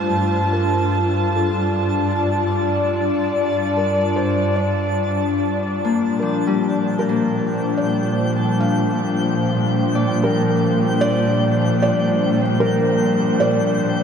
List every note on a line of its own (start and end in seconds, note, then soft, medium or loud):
0.00 6.16 G2 medium
0.00 1.17 G3 medium
0.00 14.03 G3 medium
0.00 1.44 A3 soft
0.00 14.03 D4 medium
0.00 7.99 F4 medium
0.00 0.57 C5 medium
0.00 1.51 C5 medium
0.00 6.23 A5 medium
0.00 8.18 A5 medium
0.53 1.36 A#4 medium
1.27 7.35 D5 medium
1.34 2.11 A4 medium
2.11 4.35 A5 soft
3.77 4.19 A#4 medium
4.16 4.58 C5 medium
4.56 5.34 D5 medium
5.85 7.09 A#3 medium
6.19 14.03 A#2 medium
6.19 10.12 F3 medium
6.19 6.98 A#4 medium
6.19 14.03 G5 medium
6.47 10.37 G3 medium
6.71 14.03 F3 medium
6.71 14.03 C5 medium
6.99 7.84 A#4 medium
7.09 10.30 A#3 medium
7.77 8.64 D5 medium
8.36 10.59 A5 soft
8.60 9.19 F5 medium
9.95 12.17 D5 medium
10.24 11.07 A#4 medium
11.01 11.81 D5 loud
11.82 12.40 D5 medium
12.60 13.45 A#4 medium
13.40 14.03 D5 medium